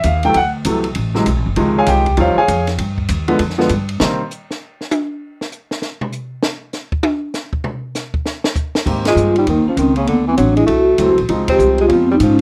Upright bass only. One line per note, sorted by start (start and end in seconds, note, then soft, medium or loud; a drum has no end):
0.04 0.34 D#2 loud
0.35 0.64 D2 medium
0.65 0.95 C2 medium
0.96 1.25 A1 medium
1.26 1.36 B1 medium
1.36 1.45 A1 medium
1.46 1.56 F#1 medium
1.57 1.86 C#2 medium
1.87 2.17 C2 loud
2.18 2.35 D#2 medium
2.36 muted upright bass stroke soft
2.48 2.78 F2 medium
2.78 3.08 G2 medium
3.09 3.38 D#2 medium
3.39 3.69 F2 medium
3.70 3.99 G2 medium
4.01 4.19 C3 medium
8.86 9.15 G#2 medium
9.16 9.45 G2 medium
9.47 9.64 D#2 medium
9.65 muted upright bass stroke soft
9.77 10.06 C#2 medium
10.07 10.37 D2 medium
10.38 10.67 A1 medium
10.68 10.98 C2 medium
10.98 11.08 D2 medium
11.08 11.18 C2 medium
11.19 11.28 A1 medium
11.29 11.58 C#2 medium
11.59 11.88 C2 medium
11.90 12.19 F2 medium
12.20 12.41 G#2 medium